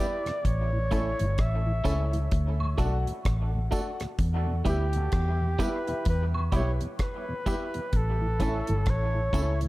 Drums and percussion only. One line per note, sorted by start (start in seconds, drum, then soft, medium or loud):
0.26 cross-stick medium
0.26 closed hi-hat soft
0.45 kick loud
0.45 closed hi-hat loud
0.91 kick medium
0.91 closed hi-hat medium
0.91 tambourine soft
1.19 closed hi-hat medium
1.38 kick loud
1.38 cross-stick loud
1.38 closed hi-hat medium
1.85 kick medium
1.85 closed hi-hat medium
1.85 tambourine medium
2.13 closed hi-hat soft
2.31 kick loud
2.31 closed hi-hat medium
2.60 high woodblock medium
2.78 kick medium
2.78 closed hi-hat medium
2.78 tambourine soft
3.07 closed hi-hat soft
3.25 kick loud
3.25 cross-stick loud
3.25 closed hi-hat medium
3.72 kick medium
3.72 closed hi-hat medium
3.72 tambourine medium
4.00 cross-stick medium
4.00 closed hi-hat soft
4.19 kick loud
4.19 closed hi-hat medium
4.65 kick medium
4.65 closed hi-hat medium
4.65 tambourine soft
4.93 closed hi-hat medium
5.12 kick loud
5.12 cross-stick medium
5.12 closed hi-hat medium
5.59 kick medium
5.59 closed hi-hat medium
5.59 tambourine medium
5.87 closed hi-hat soft
6.05 kick loud
6.05 closed hi-hat medium
6.34 high woodblock medium
6.52 kick medium
6.52 closed hi-hat medium
6.52 tambourine medium
6.81 closed hi-hat soft
6.99 kick loud
6.99 cross-stick loud
6.99 closed hi-hat medium
7.46 kick medium
7.46 closed hi-hat medium
7.46 tambourine medium
7.74 closed hi-hat soft
7.93 kick loud
7.93 closed hi-hat medium
8.40 kick medium
8.40 closed hi-hat medium
8.40 tambourine soft
8.67 closed hi-hat medium
8.86 kick loud
8.86 cross-stick medium
8.86 closed hi-hat medium
9.33 kick medium
9.33 closed hi-hat medium
9.33 tambourine medium
9.61 closed hi-hat soft